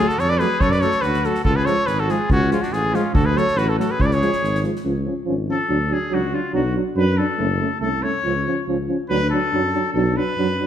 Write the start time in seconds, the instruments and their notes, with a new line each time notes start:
Already playing: trumpet F4
0.08 trumpet F#4, cornet A4, snare
0.18 tuba F2, trumpet A4, cornet C#5, snare
0.29 trumpet B4, cornet D5
0.39 euphonium F#3 A3, trumpet G#4, cornet B4, snare
0.60 tuba F#2, trumpet A4, cornet C#5, kick
0.71 trumpet B4, cornet D5, snare
0.80 euphonium F#3 A3, trumpet A4, cornet C#5, snare
0.91 snare
1.01 tuba D2, trumpet F#4, cornet B4, snare
1.14 snare
1.24 euphonium F#3 A3, trumpet F#4, cornet A4, snare
1.35 snare
1.44 tuba C#2, trumpet F4, cornet A4, kick
1.56 trumpet G#4, cornet B4
1.65 euphonium F3 G#3, trumpet A4, cornet C#5, snare
1.86 tuba G#1, trumpet G#4, cornet B4, snare
1.99 trumpet F#4, cornet A4
2.08 euphonium F3 G#3, trumpet F4, cornet G#4, snare
2.29 tuba C#2, trumpet C#4, cornet F#4, kick
2.50 euphonium F3 G#3, trumpet C#4, cornet F4, snare
2.62 trumpet D4, cornet F#4, snare
2.71 tuba A1, trumpet F4, cornet G#4, snare
2.93 euphonium F3 G#3, trumpet C#4, cornet F4, snare
3.13 tuba D2, trumpet F#4, cornet A4, kick
3.25 trumpet G#4, cornet B4
3.35 euphonium F#3 A3, trumpet A4, cornet C#5, snare
3.48 snare
3.56 tuba A1, trumpet F#4, cornet B4, snare
3.69 trumpet F#4, cornet A4
3.78 euphonium F#3 A3, trumpet F#4, cornet A4, snare
3.91 trumpet G#4, cornet B4
3.99 tuba C#2, trumpet G#4, cornet C#5, kick
4.06 trumpet B4, cornet D5
4.11 trumpet G#4, cornet C#5, snare
4.21 euphonium F3 G#3, snare
4.32 snare
4.42 tuba G#1, snare
4.55 snare
4.63 euphonium F3 G#3, snare
4.76 snare
4.84 tuba C#2, euphonium F3 C#4
5.04 euphonium F3 C#4
5.25 tuba G#1, euphonium F3 C#4
5.48 euphonium F3 C#4, trumpet A4
5.69 tuba D2, euphonium F#3 D4
5.90 euphonium F#3 D4, trumpet G#4
6.11 tuba C#2, euphonium F#3 D4, trumpet F#4
6.32 euphonium F#3 D4, trumpet F4
6.53 tuba B1, euphonium F#3 D4, trumpet F#4
6.75 euphonium F#3 D4
6.96 tuba F#2, euphonium F#3 D4, trumpet B4
7.17 euphonium F#3 D4, trumpet A4
7.38 tuba F#1, euphonium A3 C#4
7.59 euphonium A3 C#4
7.80 tuba C2, euphonium A3 C#4, trumpet A4
8.03 euphonium A3 C#4, trumpet C#5
8.23 tuba C#2, euphonium F3 C#4
8.46 euphonium F3 C#4
8.66 tuba C#2, euphonium F3 C#4
8.88 euphonium F3 C#4
9.09 tuba D2, euphonium F#3 D4, trumpet B4
9.30 euphonium F#3 D4, trumpet A4
9.52 tuba F#2, euphonium F#3 D4
9.73 euphonium F#3 D4
9.93 tuba B1, euphonium F#3 D4, trumpet A4
10.15 euphonium F#3 D4, trumpet B4
10.37 tuba F#2, euphonium F#3 D4
10.59 euphonium F#3 D4